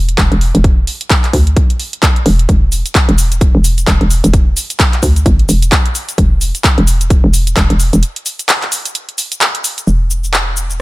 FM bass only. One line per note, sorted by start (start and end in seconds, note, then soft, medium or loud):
0.00 0.17 E1 loud
0.18 0.30 E1 medium
0.32 0.53 E1 medium
0.55 0.86 E1 medium
1.33 1.55 D2 loud
2.26 2.47 E1 loud
2.49 2.83 E1 loud
3.09 3.53 E1 medium
3.55 3.86 E1 medium
3.87 3.99 E1 loud
4.01 4.22 E1 loud
4.24 4.55 E1 medium
5.03 5.24 D2 loud
5.26 5.47 G1 loud
5.49 5.70 E1 medium
6.18 6.53 E1 loud
6.78 7.22 E1 loud
7.24 7.55 E1 loud
7.57 7.68 E1 loud
7.70 7.91 E1 medium
7.93 8.03 E1 medium
9.87 10.81 E1 medium